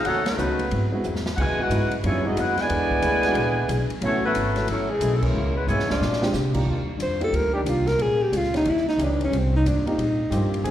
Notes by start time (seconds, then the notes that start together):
0.05 D#2 D#3 A3 C#4 D#4 F#4 A4 C#5 F#5, ride
0.26 C#3 F#3 A3 B3 D#4 F#4 B4, snare, ride
0.37 C#2 D#3 F#3 A3 C#4 D#4 F#4, hi-hat pedal
0.59 ride
0.71 G#2 F#3 C4 E4, ride
0.92 G#3 B3 C4 E4 F#4
1.04 E2 G#2 F#3 C4 E4, hi-hat pedal
1.16 snare
1.26 snare
1.36 C#2 B2 C#3 E3 F#3 G#3 B3 F#5 G#5, kick, crash
1.40 E4 B4 D#5
1.57 G#3 B3 E4 F#4 B4, muted upright bass stroke
1.61 D#5 F#5
1.69 G#2 C#3 F#3 G#3 B3 D#4 E4 F#4, hi-hat pedal, ride
1.91 ride
2.03 F#2 C#3 E3 F#3 G3 G#3 A#3 B3 C#4 D4 D#4 E4 F4 G#4 C#5, ride
2.08 E4
2.24 G#3 B3 D#4 E4 F#4 G#4 D#5
2.36 D#2 C#3 F#3 G#3 B3 E4 F#4 B4 D#5 F#5, hi-hat pedal, ride
2.57 D3 G#3 B3 E4 B4 D5 G#5, snare, ride
2.69 E2 E3 B3 D4 G#4, ride
2.91 kick
3.02 D2 E3 B3 D4 G#4, hi-hat pedal, ride
3.23 G#3 B3 D4 E4 F#4, snare, ride
3.34 A#1 E3 B3 D4 G#4, ride
3.68 B1 E3 B3 D4 G#4, hi-hat pedal, ride
3.89 muted upright bass stroke, ride
4.00 A1 A2 E3 F#3 A3 B3 C#4 E4 F#4, ride
4.04 A3 F#4 C#5
4.24 E3 F#3 A3 B3 E4 F#4 B4
4.34 G#1 A2 F#3 C#4 E4, hi-hat pedal, ride
4.56 A3 B3 C#4 E4 A4, snare, ride
4.67 A1 A2 E3 F#3 A3 C#4 E4 A4, ride
4.90 E3 G#3 A3 C#4 G#4
5.00 B1 A2 F#3 C#4 E4, hi-hat pedal, ride
5.15 A4
5.22 B2 E3 G#3 A#3 C#4 E4 A#4, kick, crash
5.32 C#2 C#3 G#3 B3 E4
5.55 E3 G#3 B3 C#4 E4 B4
5.66 G#2 C#3 E3 G#3 B3 C#4 E4 G#4 C#5, hi-hat pedal
5.78 E2, snare
5.88 C#2 F3 G#3 C4 D4 F4 G#4 D5, snare
5.99 A#2 G#3 D4 G4, snare
6.13 snare
6.22 G#3 C4 D4 F4 G4, snare
6.33 A#2 C3 G#3 D4 G4, snare, hi-hat pedal
6.54 A#3 D4 D#4 F4 G4, kick, crash
6.65 D#2 D#3 G3 D4 F4
6.97 F2 D#3 G3 D4 F4, hi-hat pedal, ride
7.03 C5
7.20 A#3 D4 D#4 F4 G4 A4, ride
7.31 D2 D#3 G3 D4 F4, ride
7.36 A#4
7.53 D#3 G3 D4 G4
7.64 C2 D#3 G3 A#3 D4 D#4 F4 G4, hi-hat pedal, ride
7.87 A#4, snare, ride
7.97 A#1 A#2 G#3 C#4 F4, ride
8.02 G#4
8.22 G4
8.32 C#2 A#2 G#3 C#4 F4, hi-hat pedal, ride
8.37 F4
8.44 snare
8.54 A#3 C#4 D#4 E4 G4, snare, ride
8.65 D#2 D#3 G3 C#4 E4, ride
8.70 E4
8.77 snare
8.89 D#4, snare
8.97 C#2 D#3 E3 G3 C#4 D#4 E4 G4, hi-hat pedal, ride
9.04 D4
9.21 ride
9.25 C#4
9.31 C2 G#2 G3 C4 F4, ride
9.38 C4
9.56 D#4
9.65 D#2 G#2 G3 C4 D4 F4, hi-hat pedal, ride
9.86 A#3 C4 D#4 F4 G4, ride
9.98 G#2 A#2 G3 C4, ride
10.02 F4
10.31 G2 G#2 F3 G3 A#3 C4 F4 G4, hi-hat pedal, ride
10.54 ride
10.63 D2 D3 F3 C4 D4 F4 G#4, ride